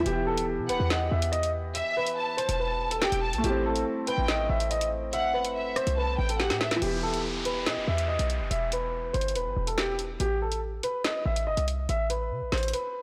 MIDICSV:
0, 0, Header, 1, 7, 480
1, 0, Start_track
1, 0, Key_signature, 1, "minor"
1, 0, Tempo, 422535
1, 66, Time_signature, 4, 2, 24, 8
1, 14792, End_track
2, 0, Start_track
2, 0, Title_t, "Violin section"
2, 0, Program_c, 0, 48
2, 787, Note_on_c, 0, 78, 98
2, 1015, Note_off_c, 0, 78, 0
2, 1987, Note_on_c, 0, 76, 121
2, 2438, Note_off_c, 0, 76, 0
2, 2466, Note_on_c, 0, 81, 89
2, 3381, Note_off_c, 0, 81, 0
2, 3426, Note_on_c, 0, 79, 96
2, 3654, Note_off_c, 0, 79, 0
2, 3666, Note_on_c, 0, 81, 86
2, 3894, Note_off_c, 0, 81, 0
2, 4627, Note_on_c, 0, 79, 99
2, 4855, Note_off_c, 0, 79, 0
2, 5825, Note_on_c, 0, 78, 105
2, 6277, Note_off_c, 0, 78, 0
2, 6307, Note_on_c, 0, 76, 86
2, 6758, Note_off_c, 0, 76, 0
2, 6787, Note_on_c, 0, 81, 94
2, 7015, Note_off_c, 0, 81, 0
2, 7026, Note_on_c, 0, 79, 93
2, 7254, Note_off_c, 0, 79, 0
2, 7268, Note_on_c, 0, 78, 93
2, 7495, Note_off_c, 0, 78, 0
2, 7507, Note_on_c, 0, 76, 82
2, 7735, Note_off_c, 0, 76, 0
2, 14792, End_track
3, 0, Start_track
3, 0, Title_t, "Grand piano"
3, 0, Program_c, 1, 0
3, 66, Note_on_c, 1, 67, 100
3, 255, Note_off_c, 1, 67, 0
3, 304, Note_on_c, 1, 69, 88
3, 494, Note_off_c, 1, 69, 0
3, 786, Note_on_c, 1, 71, 99
3, 975, Note_off_c, 1, 71, 0
3, 1025, Note_on_c, 1, 75, 78
3, 1214, Note_off_c, 1, 75, 0
3, 1269, Note_on_c, 1, 76, 87
3, 1457, Note_off_c, 1, 76, 0
3, 1498, Note_on_c, 1, 75, 91
3, 1690, Note_off_c, 1, 75, 0
3, 1983, Note_on_c, 1, 76, 83
3, 2173, Note_off_c, 1, 76, 0
3, 2236, Note_on_c, 1, 71, 94
3, 2683, Note_off_c, 1, 71, 0
3, 2696, Note_on_c, 1, 72, 93
3, 2889, Note_off_c, 1, 72, 0
3, 2948, Note_on_c, 1, 71, 90
3, 3286, Note_off_c, 1, 71, 0
3, 3305, Note_on_c, 1, 69, 74
3, 3400, Note_off_c, 1, 69, 0
3, 3430, Note_on_c, 1, 67, 99
3, 3617, Note_off_c, 1, 67, 0
3, 3913, Note_on_c, 1, 67, 105
3, 4099, Note_off_c, 1, 67, 0
3, 4156, Note_on_c, 1, 69, 82
3, 4341, Note_off_c, 1, 69, 0
3, 4628, Note_on_c, 1, 71, 96
3, 4816, Note_off_c, 1, 71, 0
3, 4865, Note_on_c, 1, 75, 80
3, 5054, Note_off_c, 1, 75, 0
3, 5107, Note_on_c, 1, 76, 89
3, 5295, Note_off_c, 1, 76, 0
3, 5349, Note_on_c, 1, 75, 91
3, 5537, Note_off_c, 1, 75, 0
3, 5832, Note_on_c, 1, 76, 94
3, 6019, Note_off_c, 1, 76, 0
3, 6063, Note_on_c, 1, 71, 81
3, 6516, Note_off_c, 1, 71, 0
3, 6546, Note_on_c, 1, 72, 91
3, 6735, Note_off_c, 1, 72, 0
3, 6786, Note_on_c, 1, 71, 87
3, 7125, Note_off_c, 1, 71, 0
3, 7151, Note_on_c, 1, 69, 75
3, 7244, Note_off_c, 1, 69, 0
3, 7269, Note_on_c, 1, 67, 89
3, 7457, Note_off_c, 1, 67, 0
3, 7745, Note_on_c, 1, 67, 96
3, 7934, Note_off_c, 1, 67, 0
3, 7984, Note_on_c, 1, 69, 87
3, 8174, Note_off_c, 1, 69, 0
3, 8466, Note_on_c, 1, 71, 93
3, 8655, Note_off_c, 1, 71, 0
3, 8706, Note_on_c, 1, 75, 74
3, 8895, Note_off_c, 1, 75, 0
3, 8949, Note_on_c, 1, 76, 88
3, 9137, Note_off_c, 1, 76, 0
3, 9179, Note_on_c, 1, 75, 84
3, 9370, Note_off_c, 1, 75, 0
3, 9664, Note_on_c, 1, 76, 83
3, 9854, Note_off_c, 1, 76, 0
3, 9916, Note_on_c, 1, 71, 90
3, 10363, Note_off_c, 1, 71, 0
3, 10376, Note_on_c, 1, 72, 90
3, 10569, Note_off_c, 1, 72, 0
3, 10629, Note_on_c, 1, 71, 91
3, 10966, Note_off_c, 1, 71, 0
3, 10984, Note_on_c, 1, 69, 74
3, 11080, Note_off_c, 1, 69, 0
3, 11110, Note_on_c, 1, 67, 93
3, 11297, Note_off_c, 1, 67, 0
3, 11593, Note_on_c, 1, 67, 104
3, 11779, Note_off_c, 1, 67, 0
3, 11836, Note_on_c, 1, 69, 79
3, 12021, Note_off_c, 1, 69, 0
3, 12308, Note_on_c, 1, 71, 91
3, 12496, Note_off_c, 1, 71, 0
3, 12545, Note_on_c, 1, 75, 79
3, 12734, Note_off_c, 1, 75, 0
3, 12786, Note_on_c, 1, 76, 88
3, 12975, Note_off_c, 1, 76, 0
3, 13028, Note_on_c, 1, 75, 86
3, 13216, Note_off_c, 1, 75, 0
3, 13512, Note_on_c, 1, 76, 94
3, 13699, Note_off_c, 1, 76, 0
3, 13743, Note_on_c, 1, 71, 81
3, 14196, Note_off_c, 1, 71, 0
3, 14227, Note_on_c, 1, 72, 86
3, 14415, Note_off_c, 1, 72, 0
3, 14465, Note_on_c, 1, 71, 87
3, 14792, Note_off_c, 1, 71, 0
3, 14792, End_track
4, 0, Start_track
4, 0, Title_t, "Felt piano"
4, 0, Program_c, 2, 0
4, 2, Note_on_c, 2, 52, 73
4, 66, Note_on_c, 2, 59, 64
4, 131, Note_on_c, 2, 67, 77
4, 302, Control_c, 2, 64, 127
4, 3829, Note_off_c, 2, 52, 0
4, 3842, Note_on_c, 2, 57, 71
4, 3861, Note_off_c, 2, 59, 0
4, 3893, Note_off_c, 2, 67, 0
4, 3907, Note_on_c, 2, 64, 60
4, 3920, Control_c, 2, 64, 0
4, 3971, Note_on_c, 2, 60, 82
4, 4089, Control_c, 2, 64, 127
4, 7669, Note_off_c, 2, 57, 0
4, 7681, Note_on_c, 2, 52, 71
4, 7701, Note_off_c, 2, 64, 0
4, 7733, Note_off_c, 2, 60, 0
4, 7746, Note_on_c, 2, 59, 62
4, 7762, Control_c, 2, 64, 0
4, 7811, Note_on_c, 2, 67, 72
4, 7966, Control_c, 2, 64, 127
4, 11508, Note_off_c, 2, 52, 0
4, 11541, Note_off_c, 2, 59, 0
4, 11573, Note_off_c, 2, 67, 0
4, 11600, Control_c, 2, 64, 0
4, 14792, End_track
5, 0, Start_track
5, 0, Title_t, "808-style bass"
5, 0, Program_c, 3, 38
5, 66, Note_on_c, 3, 28, 110
5, 666, Note_on_c, 3, 47, 104
5, 683, Note_off_c, 3, 28, 0
5, 786, Note_on_c, 3, 28, 95
5, 803, Note_off_c, 3, 47, 0
5, 900, Note_off_c, 3, 28, 0
5, 906, Note_on_c, 3, 40, 103
5, 1252, Note_off_c, 3, 40, 0
5, 1266, Note_on_c, 3, 40, 109
5, 2072, Note_off_c, 3, 40, 0
5, 2826, Note_on_c, 3, 28, 106
5, 3517, Note_off_c, 3, 28, 0
5, 3546, Note_on_c, 3, 28, 109
5, 3786, Note_on_c, 3, 35, 101
5, 3803, Note_off_c, 3, 28, 0
5, 3900, Note_off_c, 3, 35, 0
5, 3906, Note_on_c, 3, 33, 116
5, 4367, Note_off_c, 3, 33, 0
5, 4747, Note_on_c, 3, 33, 101
5, 5092, Note_off_c, 3, 33, 0
5, 5107, Note_on_c, 3, 33, 111
5, 6066, Note_on_c, 3, 31, 105
5, 6084, Note_off_c, 3, 33, 0
5, 6522, Note_off_c, 3, 31, 0
5, 6667, Note_on_c, 3, 36, 104
5, 7012, Note_off_c, 3, 36, 0
5, 7026, Note_on_c, 3, 33, 109
5, 7387, Note_on_c, 3, 45, 99
5, 7404, Note_off_c, 3, 33, 0
5, 7729, Note_off_c, 3, 45, 0
5, 7746, Note_on_c, 3, 28, 107
5, 8707, Note_on_c, 3, 47, 96
5, 8724, Note_off_c, 3, 28, 0
5, 8826, Note_on_c, 3, 28, 100
5, 8844, Note_off_c, 3, 47, 0
5, 8940, Note_off_c, 3, 28, 0
5, 8946, Note_on_c, 3, 40, 106
5, 9292, Note_off_c, 3, 40, 0
5, 9306, Note_on_c, 3, 35, 108
5, 9546, Note_on_c, 3, 30, 99
5, 9563, Note_off_c, 3, 35, 0
5, 9660, Note_off_c, 3, 30, 0
5, 9666, Note_on_c, 3, 28, 113
5, 10357, Note_off_c, 3, 28, 0
5, 10386, Note_on_c, 3, 31, 102
5, 10626, Note_on_c, 3, 27, 98
5, 10643, Note_off_c, 3, 31, 0
5, 10746, Note_on_c, 3, 31, 99
5, 10763, Note_off_c, 3, 27, 0
5, 10860, Note_off_c, 3, 31, 0
5, 10867, Note_on_c, 3, 28, 103
5, 11558, Note_off_c, 3, 28, 0
5, 11587, Note_on_c, 3, 33, 109
5, 12278, Note_off_c, 3, 33, 0
5, 12786, Note_on_c, 3, 33, 108
5, 13027, Note_on_c, 3, 31, 96
5, 13044, Note_off_c, 3, 33, 0
5, 13140, Note_off_c, 3, 31, 0
5, 13146, Note_on_c, 3, 36, 101
5, 13492, Note_off_c, 3, 36, 0
5, 13507, Note_on_c, 3, 33, 107
5, 13987, Note_on_c, 3, 48, 99
5, 14004, Note_off_c, 3, 33, 0
5, 14107, Note_on_c, 3, 33, 102
5, 14124, Note_off_c, 3, 48, 0
5, 14221, Note_off_c, 3, 33, 0
5, 14227, Note_on_c, 3, 33, 106
5, 14467, Note_off_c, 3, 33, 0
5, 14792, End_track
6, 0, Start_track
6, 0, Title_t, "Downlifter"
6, 0, Program_c, 4, 103
6, 7747, Note_on_c, 4, 60, 86
6, 11586, Note_off_c, 4, 60, 0
6, 14792, End_track
7, 0, Start_track
7, 0, Title_t, "Drums"
7, 66, Note_on_c, 9, 42, 94
7, 180, Note_off_c, 9, 42, 0
7, 426, Note_on_c, 9, 42, 81
7, 540, Note_off_c, 9, 42, 0
7, 786, Note_on_c, 9, 42, 84
7, 900, Note_off_c, 9, 42, 0
7, 1027, Note_on_c, 9, 38, 122
7, 1140, Note_off_c, 9, 38, 0
7, 1388, Note_on_c, 9, 42, 84
7, 1501, Note_off_c, 9, 42, 0
7, 1507, Note_on_c, 9, 42, 85
7, 1621, Note_off_c, 9, 42, 0
7, 1626, Note_on_c, 9, 42, 88
7, 1740, Note_off_c, 9, 42, 0
7, 1986, Note_on_c, 9, 42, 93
7, 2100, Note_off_c, 9, 42, 0
7, 2346, Note_on_c, 9, 42, 78
7, 2460, Note_off_c, 9, 42, 0
7, 2706, Note_on_c, 9, 42, 81
7, 2820, Note_off_c, 9, 42, 0
7, 2826, Note_on_c, 9, 42, 98
7, 2940, Note_off_c, 9, 42, 0
7, 3308, Note_on_c, 9, 42, 83
7, 3422, Note_off_c, 9, 42, 0
7, 3426, Note_on_c, 9, 38, 115
7, 3540, Note_off_c, 9, 38, 0
7, 3546, Note_on_c, 9, 42, 86
7, 3660, Note_off_c, 9, 42, 0
7, 3784, Note_on_c, 9, 42, 88
7, 3898, Note_off_c, 9, 42, 0
7, 3906, Note_on_c, 9, 42, 95
7, 4020, Note_off_c, 9, 42, 0
7, 4267, Note_on_c, 9, 42, 78
7, 4380, Note_off_c, 9, 42, 0
7, 4626, Note_on_c, 9, 42, 85
7, 4740, Note_off_c, 9, 42, 0
7, 4867, Note_on_c, 9, 38, 125
7, 4980, Note_off_c, 9, 38, 0
7, 5228, Note_on_c, 9, 42, 82
7, 5342, Note_off_c, 9, 42, 0
7, 5348, Note_on_c, 9, 42, 86
7, 5462, Note_off_c, 9, 42, 0
7, 5467, Note_on_c, 9, 42, 92
7, 5580, Note_off_c, 9, 42, 0
7, 5827, Note_on_c, 9, 42, 94
7, 5940, Note_off_c, 9, 42, 0
7, 6186, Note_on_c, 9, 42, 78
7, 6300, Note_off_c, 9, 42, 0
7, 6545, Note_on_c, 9, 37, 94
7, 6546, Note_on_c, 9, 42, 83
7, 6659, Note_off_c, 9, 37, 0
7, 6660, Note_off_c, 9, 42, 0
7, 6666, Note_on_c, 9, 42, 98
7, 6780, Note_off_c, 9, 42, 0
7, 7146, Note_on_c, 9, 42, 85
7, 7260, Note_off_c, 9, 42, 0
7, 7266, Note_on_c, 9, 38, 64
7, 7266, Note_on_c, 9, 42, 48
7, 7380, Note_off_c, 9, 38, 0
7, 7380, Note_off_c, 9, 42, 0
7, 7386, Note_on_c, 9, 38, 73
7, 7386, Note_on_c, 9, 42, 88
7, 7500, Note_off_c, 9, 38, 0
7, 7500, Note_off_c, 9, 42, 0
7, 7506, Note_on_c, 9, 38, 100
7, 7620, Note_off_c, 9, 38, 0
7, 7625, Note_on_c, 9, 42, 88
7, 7626, Note_on_c, 9, 38, 102
7, 7739, Note_off_c, 9, 42, 0
7, 7740, Note_off_c, 9, 38, 0
7, 7747, Note_on_c, 9, 42, 92
7, 7860, Note_off_c, 9, 42, 0
7, 8107, Note_on_c, 9, 42, 75
7, 8220, Note_off_c, 9, 42, 0
7, 8466, Note_on_c, 9, 42, 81
7, 8580, Note_off_c, 9, 42, 0
7, 8707, Note_on_c, 9, 38, 122
7, 8707, Note_on_c, 9, 42, 78
7, 8820, Note_off_c, 9, 42, 0
7, 8821, Note_off_c, 9, 38, 0
7, 9068, Note_on_c, 9, 42, 86
7, 9182, Note_off_c, 9, 42, 0
7, 9307, Note_on_c, 9, 42, 78
7, 9420, Note_off_c, 9, 42, 0
7, 9426, Note_on_c, 9, 42, 74
7, 9540, Note_off_c, 9, 42, 0
7, 9667, Note_on_c, 9, 42, 93
7, 9780, Note_off_c, 9, 42, 0
7, 9905, Note_on_c, 9, 42, 90
7, 10019, Note_off_c, 9, 42, 0
7, 10386, Note_on_c, 9, 42, 48
7, 10466, Note_off_c, 9, 42, 0
7, 10466, Note_on_c, 9, 42, 63
7, 10547, Note_off_c, 9, 42, 0
7, 10547, Note_on_c, 9, 42, 80
7, 10627, Note_off_c, 9, 42, 0
7, 10627, Note_on_c, 9, 42, 79
7, 10741, Note_off_c, 9, 42, 0
7, 10988, Note_on_c, 9, 42, 89
7, 11102, Note_off_c, 9, 42, 0
7, 11107, Note_on_c, 9, 38, 110
7, 11220, Note_off_c, 9, 38, 0
7, 11346, Note_on_c, 9, 42, 76
7, 11460, Note_off_c, 9, 42, 0
7, 11587, Note_on_c, 9, 42, 92
7, 11700, Note_off_c, 9, 42, 0
7, 11947, Note_on_c, 9, 42, 76
7, 12060, Note_off_c, 9, 42, 0
7, 12306, Note_on_c, 9, 42, 82
7, 12420, Note_off_c, 9, 42, 0
7, 12547, Note_on_c, 9, 38, 118
7, 12547, Note_on_c, 9, 42, 79
7, 12661, Note_off_c, 9, 38, 0
7, 12661, Note_off_c, 9, 42, 0
7, 12908, Note_on_c, 9, 42, 90
7, 13022, Note_off_c, 9, 42, 0
7, 13146, Note_on_c, 9, 42, 80
7, 13260, Note_off_c, 9, 42, 0
7, 13266, Note_on_c, 9, 42, 77
7, 13380, Note_off_c, 9, 42, 0
7, 13507, Note_on_c, 9, 42, 92
7, 13621, Note_off_c, 9, 42, 0
7, 13745, Note_on_c, 9, 42, 88
7, 13859, Note_off_c, 9, 42, 0
7, 14225, Note_on_c, 9, 38, 65
7, 14226, Note_on_c, 9, 42, 46
7, 14286, Note_off_c, 9, 42, 0
7, 14286, Note_on_c, 9, 42, 58
7, 14339, Note_off_c, 9, 38, 0
7, 14346, Note_off_c, 9, 42, 0
7, 14346, Note_on_c, 9, 42, 70
7, 14406, Note_off_c, 9, 42, 0
7, 14406, Note_on_c, 9, 42, 81
7, 14467, Note_off_c, 9, 42, 0
7, 14467, Note_on_c, 9, 42, 77
7, 14581, Note_off_c, 9, 42, 0
7, 14792, End_track
0, 0, End_of_file